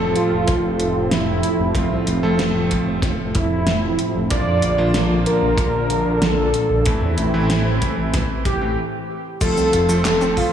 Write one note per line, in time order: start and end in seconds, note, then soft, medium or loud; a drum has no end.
0.00 0.14 F1 medium
0.00 4.27 A2 medium
0.00 4.27 C3 medium
0.00 1.72 F3 medium
0.00 4.27 F3 medium
0.00 1.71 A3 medium
0.00 1.71 C4 medium
0.00 4.27 C4 medium
0.00 1.72 A4 loud
0.00 1.73 A4 medium
0.16 0.99 F4 medium
0.16 closed hi-hat medium
0.32 0.46 F1 medium
0.48 0.62 F1 loud
0.48 kick loud
0.48 closed hi-hat medium
0.64 0.78 F1 medium
0.80 0.94 F1 medium
0.80 closed hi-hat medium
0.96 1.10 F1 medium
1.11 1.26 F1 loud
1.11 1.95 E4 loud
1.11 snare loud
1.11 closed hi-hat medium
1.28 1.42 F1 medium
1.43 closed hi-hat medium
1.59 1.74 F1 medium
1.75 1.89 F1 loud
1.75 2.19 F3 medium
1.75 2.19 A3 medium
1.75 2.19 C4 medium
1.75 2.19 F4 medium
1.75 kick loud
1.75 closed hi-hat medium
1.91 2.06 C2 medium
2.07 2.22 F1 medium
2.07 closed hi-hat medium
2.23 2.37 F1 medium
2.23 4.27 F3 medium
2.23 4.27 A3 medium
2.23 4.27 C4 medium
2.23 4.27 A4 loud
2.39 2.53 F1 loud
2.39 snare loud
2.39 closed hi-hat medium
2.55 2.69 F1 medium
2.71 kick medium
2.71 closed hi-hat medium
2.87 3.01 F1 medium
3.02 3.17 F1 loud
3.02 kick loud
3.02 snare medium
3.02 closed hi-hat medium
3.19 3.33 F1 medium
3.35 3.49 F1 medium
3.35 4.18 E4 loud
3.35 kick loud
3.35 closed hi-hat medium
3.51 3.65 F1 medium
3.67 3.81 F1 loud
3.67 snare loud
3.67 closed hi-hat medium
3.83 3.97 F1 medium
3.99 closed hi-hat medium
4.15 4.29 F1 medium
4.30 4.45 A#1 loud
4.30 6.83 A#2 medium
4.30 6.83 D3 medium
4.30 6.83 F3 medium
4.30 4.75 F3 medium
4.30 4.75 A#3 medium
4.30 6.83 D4 medium
4.30 4.75 D4 medium
4.30 4.75 F4 medium
4.30 5.14 D5 loud
4.30 kick loud
4.30 closed hi-hat medium
4.47 4.61 F2 medium
4.62 4.77 A#1 medium
4.62 closed hi-hat medium
4.78 4.93 A#1 medium
4.78 6.82 F3 medium
4.78 6.82 A#3 medium
4.78 6.82 D4 medium
4.78 6.82 F4 loud
4.94 5.09 A#1 loud
4.94 snare loud
4.94 closed hi-hat medium
5.11 5.25 A#1 medium
5.26 6.24 A#4 medium
5.26 closed hi-hat medium
5.42 5.57 A#1 medium
5.58 5.72 A#1 loud
5.58 kick loud
5.58 closed hi-hat medium
5.74 5.88 A#1 medium
5.90 6.04 A#1 medium
5.90 closed hi-hat medium
6.06 6.20 A#1 medium
6.22 6.36 A#1 loud
6.22 7.05 A4 loud
6.22 snare loud
6.22 closed hi-hat medium
6.38 6.52 A#1 medium
6.54 closed hi-hat medium
6.70 6.84 A#1 medium
6.85 7.00 A1 loud
6.85 8.75 A2 medium
6.85 8.75 C3 medium
6.85 8.75 E3 medium
6.85 7.30 E3 medium
6.85 7.30 A3 medium
6.85 8.75 C4 medium
6.85 7.30 C4 medium
6.85 8.75 E4 medium
6.85 7.30 E4 medium
6.85 kick loud
6.85 closed hi-hat medium
7.02 7.16 E2 medium
7.18 7.32 A1 medium
7.18 closed hi-hat medium
7.34 7.48 A1 medium
7.34 8.58 E3 medium
7.34 8.58 A3 medium
7.34 8.58 C4 medium
7.34 8.58 E4 loud
7.49 7.64 A1 loud
7.49 snare loud
7.49 closed hi-hat medium
7.66 7.80 A1 medium
7.82 kick medium
7.82 closed hi-hat medium
7.97 8.12 A1 medium
8.14 8.28 A1 loud
8.14 kick loud
8.14 snare medium
8.14 closed hi-hat medium
8.29 8.44 A1 medium
8.45 8.60 A1 medium
8.45 8.77 G4 loud
8.45 kick medium
8.45 closed hi-hat medium
8.61 8.76 A1 medium
8.61 8.77 E3 medium
8.61 8.77 A3 medium
8.61 8.77 C4 medium
8.61 8.77 G4 medium
9.41 9.55 F1 loud
9.41 9.85 F3 medium
9.41 9.54 F3 medium
9.41 10.53 F3 medium
9.41 9.85 A3 medium
9.41 9.85 C4 medium
9.41 9.85 F4 medium
9.41 10.24 A4 loud
9.41 10.53 A4 medium
9.41 10.53 C5 medium
9.41 10.53 A5 medium
9.41 kick loud
9.41 closed hi-hat loud
9.41 crash loud
9.41 cabasa soft
9.57 9.71 C2 medium
9.57 9.66 C4 medium
9.57 cabasa soft
9.73 9.87 F1 medium
9.73 9.82 F4 medium
9.73 closed hi-hat medium
9.89 10.03 F1 medium
9.89 10.53 F3 loud
9.89 9.94 F3 loud
9.89 10.53 A3 medium
9.89 10.53 C4 medium
9.89 10.53 A4 loud
9.89 cabasa medium
10.05 10.19 F1 loud
10.05 10.18 A3 loud
10.05 snare loud
10.05 clap loud
10.05 closed hi-hat loud
10.05 cabasa soft
10.21 10.35 F1 medium
10.21 10.26 C4 loud
10.21 cabasa soft
10.37 10.50 F3 medium
10.37 10.53 F4 loud
10.37 kick medium
10.37 open hi-hat medium